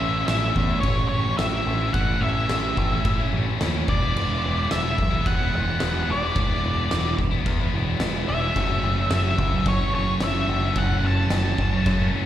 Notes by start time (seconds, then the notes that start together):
Already playing: A2 E3 A3 C#4 E4 E5
0.00 A1 E3 A3 C#4 E4
0.27 A1 A2 E3 A3 C#4 E4 E5, snare, crash
0.55 E2 E3 A3 C#4 E4, muted distorted electric guitar stroke, kick
0.69 A3 C#4 E4, muted distorted electric guitar stroke
0.80 A1 C#5, kick, crash
0.96 A3 C#4 E4
1.09 A1 E3 A3 C#4 C#5
1.13 E4
1.25 muted distorted electric guitar stroke
1.37 A1 A2 E3 A3 C#4 E4 E5, snare, crash
1.51 A3 C#4 E4
1.65 A1 E3 A3 C#4 E4
1.79 A3 C#4 E4
1.93 A1 A2 E3 A3 C#4 E4 F#5, kick, crash
2.08 A3 C#4 E4
2.21 A1 E3 A3 C#4 E5
2.25 E4
2.48 A1 A2 E3 A3 C#4 E4, snare, crash
2.76 A1 E3 A3 C#4 E4, muted distorted electric guitar stroke, kick
2.89 A3 C#4 E4, muted distorted electric guitar stroke
3.05 A2, kick, crash
3.18 A3 C#4 E4
3.32 A1 E3 A3 C#4 E4
3.46 muted distorted electric guitar stroke
3.59 D#2 A2 E3 A3 C#4 E4, snare, crash
3.73 A3 C#4 E4
3.87 E1 E3 G#3 B3 E4 D5, kick
4.02 G#3 B3 E4
4.15 E1 E3 G#3 B3 E4, crash
4.28 G#3 B3 E4
4.42 E1 E3 G#3 B3 E4
4.69 E1 E3 G#3 B3 E4 E5, snare, crash
4.97 B1 E3 G#3 B3 E4, muted distorted electric guitar stroke, kick
5.11 G#3 B3 E4, muted distorted electric guitar stroke
5.26 E1 F#5, kick, crash
5.39 G#3 B3 E4
5.52 E1 E3 G#3 B3 E4
5.67 muted distorted electric guitar stroke
5.80 E1 E3 G#3 B3 E4, snare, crash
5.94 G#3 B3 E4
6.06 E1 E3 G#3 B3 E4
6.11 D5
6.21 G#3 B3 E4
6.35 E1 E3 G#3 B3 E4, kick, crash
6.50 G#3 B3 E4
6.63 E1 E3 G#3 B3 E4
6.90 E1 E3 G#3 B3 E4, snare, crash
7.17 E1 E3 G#3 B3 E4, muted distorted electric guitar stroke, kick
7.31 B3 E4, muted distorted electric guitar stroke
7.35 G#3
7.46 E2, kick, crash
7.60 G#3 B3 E4
7.73 E1 E3 G#3 B3 E4
7.86 muted distorted electric guitar stroke
8.00 E1 E3 G#3 B3, snare, crash
8.04 E4
8.14 G#3 B3 E4
8.27 E1 E3 G#3 B3 E4 E5
8.42 G#3 B3 E4
8.55 F#1 F#2 C#3 F#3 A3 C#4, kick, crash
8.70 F#3 A3 C#4
8.83 F#1 C#3 F#3 A3 C#4
9.10 F#1 F#2 C#3 F#3 A3 C#4 E5, snare, crash
9.38 C#2 C#3 F#3 A3, muted distorted electric guitar stroke, kick
9.42 C#4
9.51 F#3 A3 C#4, muted distorted electric guitar stroke
9.66 F#1 C#5, kick, crash
9.77 F#3 A3 C#4
9.92 F#1 C#3 F#3 A3 C#4 C#5
10.07 muted distorted electric guitar stroke
10.18 F#1 F#2 C#3 F#3 A3 C#4, snare, crash
10.24 E5
10.33 F#3 A3 C#4
10.46 F#1 C#3 F#3 A3 C#4
10.61 F#3 A3 C#4
10.74 F#1 F#2 C#3 F#3 A3 C#4, kick, crash
10.78 F#5
10.88 F#3 A3 C#4
11.01 F#1 C#3 F#3 A3 C#4
11.07 A5
11.28 F#1 F#2 C#3 F#3 A3 C#4, snare, crash
11.57 F#1 C#3 F#3 A3 C#4, muted distorted electric guitar stroke, kick
11.71 F#3 A3 C#4, muted distorted electric guitar stroke
11.86 F#2, kick, crash
11.97 F#3 A3 C#4
12.11 F#1 C#3 F#3 A3 C#4